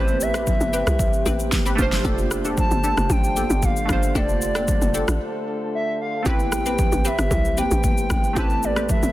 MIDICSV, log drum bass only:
0, 0, Header, 1, 2, 480
1, 0, Start_track
1, 0, Key_signature, 0, "minor"
1, 0, Tempo, 526316
1, 1869, Time_signature, 4, 2, 24, 8
1, 8319, End_track
2, 0, Start_track
2, 0, Title_t, "Log drum bass"
2, 0, Program_c, 0, 39
2, 0, Note_on_c, 0, 33, 112
2, 523, Note_off_c, 0, 33, 0
2, 553, Note_on_c, 0, 31, 94
2, 760, Note_off_c, 0, 31, 0
2, 793, Note_on_c, 0, 36, 88
2, 1000, Note_off_c, 0, 36, 0
2, 1148, Note_on_c, 0, 33, 97
2, 1561, Note_off_c, 0, 33, 0
2, 1630, Note_on_c, 0, 29, 98
2, 1836, Note_off_c, 0, 29, 0
2, 1868, Note_on_c, 0, 29, 111
2, 2443, Note_off_c, 0, 29, 0
2, 2473, Note_on_c, 0, 31, 95
2, 2680, Note_off_c, 0, 31, 0
2, 2713, Note_on_c, 0, 29, 83
2, 2812, Note_off_c, 0, 29, 0
2, 2825, Note_on_c, 0, 33, 106
2, 3141, Note_off_c, 0, 33, 0
2, 3193, Note_on_c, 0, 31, 102
2, 3499, Note_off_c, 0, 31, 0
2, 3550, Note_on_c, 0, 31, 90
2, 3756, Note_off_c, 0, 31, 0
2, 3788, Note_on_c, 0, 29, 111
2, 4363, Note_off_c, 0, 29, 0
2, 4393, Note_on_c, 0, 29, 90
2, 4600, Note_off_c, 0, 29, 0
2, 4633, Note_on_c, 0, 33, 90
2, 4733, Note_off_c, 0, 33, 0
2, 5708, Note_on_c, 0, 33, 103
2, 6283, Note_off_c, 0, 33, 0
2, 6314, Note_on_c, 0, 33, 93
2, 6520, Note_off_c, 0, 33, 0
2, 6554, Note_on_c, 0, 31, 92
2, 6653, Note_off_c, 0, 31, 0
2, 6666, Note_on_c, 0, 36, 99
2, 6981, Note_off_c, 0, 36, 0
2, 7034, Note_on_c, 0, 33, 89
2, 7339, Note_off_c, 0, 33, 0
2, 7390, Note_on_c, 0, 33, 86
2, 7596, Note_off_c, 0, 33, 0
2, 7629, Note_on_c, 0, 33, 112
2, 8203, Note_off_c, 0, 33, 0
2, 8234, Note_on_c, 0, 31, 90
2, 8319, Note_off_c, 0, 31, 0
2, 8319, End_track
0, 0, End_of_file